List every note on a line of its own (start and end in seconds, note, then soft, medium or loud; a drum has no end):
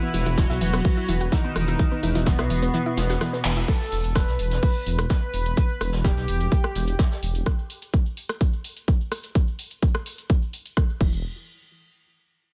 0.00 3.64 B2 medium
0.00 0.34 E3 loud
0.00 3.64 B3 medium
0.00 0.11 B3 medium
0.00 0.34 E4 loud
0.00 3.64 F#4 medium
0.00 3.64 B4 medium
0.00 0.11 B4 medium
0.00 cabasa soft
0.14 0.24 E1 loud
0.14 0.20 E3 medium
0.14 0.20 E4 medium
0.14 closed hi-hat medium
0.14 open hi-hat loud
0.26 0.45 E1 medium
0.26 0.30 E3 loud
0.26 0.30 E4 medium
0.26 closed hi-hat medium
0.26 cabasa medium
0.37 0.44 E3 loud
0.37 1.23 F#3 loud
0.37 0.44 E4 medium
0.37 1.23 F#4 loud
0.37 kick loud
0.37 snare loud
0.37 closed hi-hat medium
0.37 cabasa medium
0.50 0.59 B1 medium
0.50 0.59 E4 medium
0.50 0.59 E5 medium
0.50 snare medium
0.50 cabasa soft
0.61 0.80 E1 medium
0.61 0.68 E3 medium
0.61 0.67 E4 medium
0.61 closed hi-hat medium
0.61 open hi-hat loud
0.73 0.79 B3 medium
0.73 0.79 B4 medium
0.73 cross-stick medium
0.73 snare medium
0.73 closed hi-hat medium
0.73 cabasa medium
0.84 0.91 E3 loud
0.84 0.91 E4 medium
0.84 kick loud
0.84 closed hi-hat medium
0.84 open hi-hat medium
0.84 cabasa medium
0.97 1.06 E4 medium
0.97 1.06 E5 medium
0.97 cabasa soft
1.08 1.27 E1 medium
1.08 1.15 E3 medium
1.08 1.15 E4 medium
1.08 closed hi-hat medium
1.08 open hi-hat loud
1.21 1.24 F#4 medium
1.21 1.24 F#5 medium
1.21 closed hi-hat soft
1.21 closed hi-hat medium
1.21 cabasa medium
1.32 2.18 D#3 loud
1.32 1.41 E3 medium
1.32 2.18 D#4 loud
1.32 1.41 E4 medium
1.32 kick loud
1.32 snare loud
1.32 closed hi-hat medium
1.32 cabasa medium
1.44 1.50 B3 medium
1.44 1.50 B4 medium
1.44 cabasa soft
1.56 1.75 E1 loud
1.56 1.62 E3 medium
1.56 1.62 E4 medium
1.56 cross-stick medium
1.56 closed hi-hat medium
1.56 open hi-hat loud
1.68 1.74 E4 medium
1.68 1.74 E5 medium
1.68 closed hi-hat medium
1.68 cabasa medium
1.79 1.86 E3 loud
1.79 1.86 E4 medium
1.79 kick loud
1.79 closed hi-hat medium
1.79 cabasa medium
1.92 2.00 B3 medium
1.92 2.00 B4 medium
1.92 cabasa soft
2.03 2.13 E1 loud
2.03 2.09 E3 medium
2.03 2.09 E4 medium
2.03 closed hi-hat medium
2.03 open hi-hat loud
2.15 2.34 E1 medium
2.15 2.19 E3 loud
2.15 2.19 E4 medium
2.15 snare soft
2.15 closed hi-hat medium
2.15 cabasa medium
2.26 3.59 B2 loud
2.26 2.33 E3 loud
2.26 3.59 B3 loud
2.26 2.33 E4 medium
2.26 kick loud
2.26 snare loud
2.26 closed hi-hat loud
2.26 closed hi-hat medium
2.26 cabasa medium
2.38 2.48 B1 medium
2.38 2.48 E4 medium
2.38 2.47 E5 medium
2.38 cross-stick medium
2.38 snare soft
2.38 cabasa soft
2.50 2.69 E1 medium
2.50 2.56 E3 medium
2.50 2.56 E4 medium
2.50 closed hi-hat medium
2.50 open hi-hat loud
2.62 2.68 B3 medium
2.62 2.68 B4 medium
2.62 closed hi-hat medium
2.62 cabasa medium
2.73 2.80 E3 loud
2.73 2.80 E4 medium
2.73 closed hi-hat medium
2.73 cabasa medium
2.86 2.95 E4 medium
2.86 2.95 E5 medium
2.86 cabasa soft
2.97 3.16 E1 loud
2.97 3.04 E3 medium
2.97 3.04 E4 medium
2.97 snare loud
2.97 closed hi-hat medium
2.97 open hi-hat loud
3.10 3.13 F#4 medium
3.10 3.13 F#5 medium
3.10 snare soft
3.10 closed hi-hat medium
3.10 cabasa medium
3.21 3.30 E3 medium
3.21 3.30 E4 medium
3.21 cross-stick medium
3.21 snare loud
3.21 closed hi-hat medium
3.21 cabasa medium
3.33 3.39 B3 medium
3.33 3.39 B4 medium
3.33 snare soft
3.33 cabasa soft
3.44 3.64 E1 loud
3.44 3.51 E3 medium
3.44 3.51 E4 medium
3.44 snare loud
3.44 clap loud
3.44 closed hi-hat medium
3.44 open hi-hat loud
3.57 3.63 E4 medium
3.57 3.63 E5 medium
3.57 closed hi-hat medium
3.57 cabasa medium
3.68 4.12 A4 loud
3.68 kick loud
3.68 closed hi-hat medium
3.68 crash loud
3.68 cabasa medium
3.81 cabasa soft
3.92 4.02 E1 loud
3.92 closed hi-hat medium
3.92 open hi-hat loud
4.04 4.23 E1 medium
4.04 closed hi-hat medium
4.04 cabasa medium
4.15 5.01 B4 loud
4.15 kick loud
4.15 cross-stick medium
4.15 snare loud
4.15 closed hi-hat medium
4.15 cabasa medium
4.28 4.37 B1 medium
4.28 snare soft
4.28 cabasa soft
4.39 4.58 E1 medium
4.39 closed hi-hat medium
4.39 open hi-hat loud
4.51 snare medium
4.51 closed hi-hat medium
4.51 cabasa medium
4.63 kick loud
4.63 closed hi-hat medium
4.63 open hi-hat medium
4.63 cabasa medium
4.75 cabasa soft
4.86 5.05 E1 loud
4.86 closed hi-hat medium
4.86 open hi-hat loud
4.99 cross-stick medium
4.99 closed hi-hat medium
4.99 closed hi-hat soft
4.99 cabasa medium
5.09 5.96 B4 loud
5.09 kick loud
5.09 snare loud
5.09 closed hi-hat medium
5.09 cabasa medium
5.22 cabasa soft
5.34 5.53 E1 loud
5.34 closed hi-hat medium
5.34 open hi-hat loud
5.46 closed hi-hat medium
5.46 cabasa medium
5.57 kick loud
5.57 closed hi-hat medium
5.57 cabasa medium
5.69 cabasa soft
5.81 5.91 E1 loud
5.81 cross-stick medium
5.81 closed hi-hat medium
5.81 open hi-hat loud
5.92 6.12 E1 medium
5.92 snare soft
5.92 closed hi-hat medium
5.92 cabasa medium
6.04 7.37 G4 loud
6.04 kick loud
6.04 snare loud
6.04 closed hi-hat medium
6.04 cabasa medium
6.17 6.26 B1 medium
6.17 snare soft
6.17 cabasa soft
6.28 6.47 E1 medium
6.28 closed hi-hat medium
6.28 open hi-hat loud
6.40 closed hi-hat medium
6.40 cabasa medium
6.51 kick loud
6.51 closed hi-hat medium
6.51 cabasa medium
6.64 cross-stick medium
6.64 cabasa soft
6.75 6.94 E1 medium
6.75 snare soft
6.75 closed hi-hat medium
6.75 open hi-hat loud
6.88 closed hi-hat medium
6.88 cabasa medium
6.99 kick loud
6.99 snare loud
6.99 closed hi-hat medium
6.99 cabasa medium
7.10 snare soft
7.10 cabasa soft
7.23 7.42 E1 loud
7.23 closed hi-hat medium
7.23 open hi-hat loud
7.35 closed hi-hat medium
7.35 cabasa medium
7.46 kick loud
7.46 cross-stick medium
7.46 closed hi-hat medium
7.46 cabasa medium
7.59 cabasa soft
7.70 open hi-hat loud
7.82 closed hi-hat medium
7.82 cabasa medium
7.93 kick loud
7.93 closed hi-hat medium
7.93 cabasa medium
8.06 cabasa soft
8.17 open hi-hat loud
8.29 cross-stick soft
8.29 closed hi-hat medium
8.29 cabasa medium
8.41 kick loud
8.41 closed hi-hat medium
8.41 cabasa medium
8.53 cabasa soft
8.64 open hi-hat loud
8.77 closed hi-hat medium
8.77 cabasa medium
8.88 kick loud
8.88 closed hi-hat medium
8.88 cabasa medium
9.01 cabasa soft
9.12 cross-stick soft
9.12 open hi-hat loud
9.23 closed hi-hat medium
9.23 cabasa medium
9.35 kick loud
9.35 closed hi-hat medium
9.35 cabasa medium
9.48 cabasa soft
9.59 open hi-hat loud
9.70 closed hi-hat medium
9.70 cabasa medium
9.82 kick loud
9.82 closed hi-hat medium
9.82 cabasa medium
9.94 cross-stick medium
9.94 cabasa soft
10.06 open hi-hat loud
10.18 closed hi-hat medium
10.18 cabasa medium
10.29 kick loud
10.29 closed hi-hat medium
10.29 cabasa medium
10.42 cabasa soft
10.53 open hi-hat loud
10.66 closed hi-hat medium
10.66 cabasa medium
10.77 kick loud
10.77 cross-stick soft
10.77 closed hi-hat medium
10.77 cabasa medium
10.90 cabasa soft
11.01 11.23 E1 loud
11.01 11.23 E3 medium
11.01 kick loud
11.01 crash medium
11.13 cabasa medium